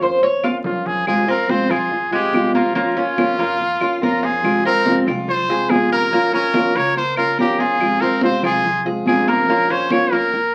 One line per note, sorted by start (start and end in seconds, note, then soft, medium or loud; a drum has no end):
0.01 0.61 F2 loud
0.01 0.21 A#3 soft
0.01 0.21 C#4 soft
0.01 0.21 F4 soft
0.01 0.22 C5 medium
0.22 0.43 C#5 loud
0.22 muted nylon-string guitar stroke medium
0.22 high conga soft
0.43 0.64 A#3 soft
0.43 0.64 C#4 soft
0.43 0.64 F4 soft
0.43 0.56 F4 medium
0.43 high conga medium
0.43 claves medium
0.64 1.64 F2 medium
0.64 1.06 F3 medium
0.64 1.06 A#3 medium
0.64 1.06 C#4 medium
0.64 0.88 F4 medium
0.64 1.07 F4 medium
0.64 low conga loud
0.86 1.07 G#4 medium
0.86 low conga medium
1.07 1.27 C3 medium
1.07 1.27 F3 medium
1.07 1.27 G#3 medium
1.07 1.26 C4 medium
1.07 1.26 F4 medium
1.07 1.27 G#4 loud
1.07 high conga soft
1.07 claves medium
1.27 1.48 G#3 soft
1.27 1.48 C4 soft
1.27 1.69 C4 loud
1.27 1.48 F4 medium
1.27 1.51 A#4 medium
1.27 high conga soft
1.48 1.69 C3 medium
1.48 1.69 F3 medium
1.48 1.69 G#3 medium
1.48 1.69 C4 medium
1.48 1.68 F4 medium
1.48 1.72 C5 medium
1.48 high conga loud
1.69 2.29 F2 loud
1.69 1.90 G#3 soft
1.69 1.90 C4 soft
1.69 1.90 F4 medium
1.69 2.11 F4 medium
1.69 2.12 G#4 loud
1.69 high conga soft
1.69 low conga medium
1.69 claves medium
1.91 muted nylon-string guitar stroke medium
1.91 high conga soft
2.11 2.53 G#3 medium
2.11 2.33 G#3 soft
2.11 2.33 C4 soft
2.11 2.32 F4 medium
2.11 2.52 G4 loud
2.11 high conga soft
2.32 3.32 A#1 medium
2.32 2.75 C3 medium
2.32 2.74 F3 medium
2.32 2.75 G#3 medium
2.32 2.75 C4 medium
2.32 2.76 F4 medium
2.32 high conga medium
2.32 claves medium
2.54 2.74 A#3 medium
2.54 2.74 F4 medium
2.54 high conga medium
2.75 2.95 F3 medium
2.75 2.96 A#3 medium
2.75 2.96 C#4 medium
2.75 3.98 F4 loud
2.75 2.96 F4 medium
2.75 high conga soft
2.97 3.17 A#3 soft
2.97 3.37 C#4 medium
2.97 3.17 C#4 soft
2.97 3.17 F4 medium
2.97 high conga soft
3.17 3.37 F3 medium
3.17 3.38 A#3 medium
3.17 3.38 C#4 medium
3.17 3.38 F4 medium
3.17 high conga loud
3.17 claves medium
3.38 3.77 F2 loud
3.38 3.80 A#3 medium
3.38 3.60 A#3 soft
3.38 3.59 C#4 soft
3.38 3.59 F4 soft
3.60 muted nylon-string guitar stroke medium
3.60 high conga soft
3.81 4.00 D#2 medium
3.81 4.01 A#3 soft
3.81 4.01 C#4 medium
3.81 4.01 F4 medium
3.81 high conga soft
3.81 claves medium
4.02 5.01 F2 loud
4.02 4.42 F3 medium
4.02 4.43 A#3 medium
4.02 4.43 C#4 medium
4.02 4.25 F4 medium
4.02 4.44 F4 medium
4.02 4.23 A#4 medium
4.02 high conga medium
4.23 4.64 F4 medium
4.23 4.65 G#4 loud
4.23 high conga medium
4.43 4.63 C3 medium
4.43 4.64 F3 medium
4.43 4.64 G#3 medium
4.43 4.64 C4 medium
4.43 4.64 F4 medium
4.43 high conga soft
4.43 claves medium
4.65 4.86 G#3 soft
4.65 5.06 C4 loud
4.65 4.86 C4 medium
4.65 4.85 F4 medium
4.65 5.00 A#4 loud
4.65 high conga soft
4.86 5.06 C3 medium
4.86 5.07 F3 medium
4.86 5.07 G#3 medium
4.86 5.07 C4 medium
4.86 5.06 F4 medium
4.86 high conga loud
5.07 5.66 C2 loud
5.07 5.28 G#3 soft
5.07 5.28 C4 soft
5.07 5.27 F4 medium
5.07 5.48 F4 medium
5.07 high conga soft
5.07 low conga medium
5.07 claves medium
5.28 5.72 C5 loud
5.28 muted nylon-string guitar stroke medium
5.28 high conga soft
5.28 low conga medium
5.49 5.70 G#3 soft
5.49 5.70 C4 soft
5.49 5.69 F4 medium
5.49 5.90 G#4 medium
5.49 high conga soft
5.69 6.69 A#1 medium
5.69 6.11 C3 medium
5.69 6.12 F3 medium
5.69 6.12 G#3 medium
5.69 6.12 C4 medium
5.69 6.12 F4 medium
5.69 5.91 G#4 loud
5.69 high conga medium
5.69 claves medium
5.92 6.11 A#3 medium
5.92 6.31 A#4 loud
6.12 6.33 F3 medium
6.12 6.33 A#3 medium
6.12 6.33 C#4 medium
6.12 6.32 F4 medium
6.33 6.53 A#3 soft
6.33 6.74 C#4 medium
6.33 6.54 C#4 soft
6.33 6.54 F4 medium
6.33 6.78 A#4 loud
6.33 high conga soft
6.54 6.74 F3 medium
6.54 6.75 A#3 medium
6.54 6.75 C#4 medium
6.54 6.75 F4 medium
6.54 high conga loud
6.54 claves medium
6.75 7.34 C#2 loud
6.75 7.16 A#3 medium
6.75 6.96 A#3 soft
6.75 6.96 C#4 soft
6.75 6.97 C#5 loud
6.96 7.17 C5 loud
6.96 muted nylon-string guitar stroke medium
6.96 high conga soft
7.17 7.38 A#3 soft
7.17 7.38 C#4 soft
7.17 7.38 F4 medium
7.17 7.38 F4 soft
7.17 7.37 A#4 loud
7.17 high conga soft
7.17 claves medium
7.38 8.38 F2 medium
7.38 7.79 F3 medium
7.38 7.80 A#3 medium
7.38 7.81 C#4 medium
7.38 7.81 F4 medium
7.38 7.61 G4 medium
7.38 7.59 A#4 medium
7.38 high conga medium
7.59 8.01 F4 medium
7.59 8.02 G#4 loud
7.59 high conga medium
7.80 8.01 C3 medium
7.80 8.01 F3 medium
7.80 8.01 G#3 medium
7.80 8.01 C4 medium
7.80 8.00 F4 medium
7.80 high conga soft
7.80 claves medium
8.01 8.21 G#3 soft
8.01 8.43 C4 loud
8.01 8.22 C4 soft
8.01 8.21 F4 medium
8.01 8.22 A#4 loud
8.01 high conga soft
8.21 8.43 C3 medium
8.21 8.43 F3 medium
8.21 8.43 G#3 medium
8.21 8.43 C4 medium
8.21 8.43 F4 medium
8.21 8.43 C5 loud
8.21 high conga loud
8.43 9.03 C2 loud
8.43 8.63 G#3 soft
8.43 8.63 C4 soft
8.43 8.64 F4 medium
8.43 8.85 F4 medium
8.43 8.84 G#4 loud
8.43 high conga soft
8.43 low conga medium
8.43 claves medium
8.64 muted nylon-string guitar stroke medium
8.64 high conga soft
8.64 low conga medium
8.85 9.07 G#3 soft
8.85 9.06 C4 soft
8.85 9.06 F4 medium
8.85 9.27 G#4 medium
8.85 high conga soft
9.06 10.06 A#1 medium
9.06 9.48 C3 medium
9.06 9.47 F3 medium
9.06 9.48 G#3 medium
9.06 9.49 C4 medium
9.06 9.49 F4 medium
9.06 9.30 G#4 medium
9.06 high conga medium
9.06 claves medium
9.28 9.48 A#3 medium
9.28 9.72 A#4 loud
9.28 high conga medium
9.48 9.69 F3 medium
9.48 9.69 A#3 medium
9.48 9.70 A#3 medium
9.48 9.69 C#4 medium
9.48 9.68 F4 medium
9.48 high conga soft
9.70 9.90 A#3 soft
9.70 9.90 C#4 soft
9.70 10.11 C#4 medium
9.70 9.90 F4 medium
9.70 9.94 C5 loud
9.70 high conga soft
9.90 10.11 F3 medium
9.90 10.11 A#3 medium
9.90 10.11 C#4 medium
9.90 10.11 F4 medium
9.90 10.14 C#5 loud
9.90 high conga loud
9.90 claves medium
10.12 10.55 F2 loud
10.12 10.53 A#3 medium
10.12 10.32 A#3 soft
10.12 10.33 C#4 medium
10.12 10.32 F4 soft
10.12 10.55 A#4 loud
10.33 muted nylon-string guitar stroke medium
10.33 high conga soft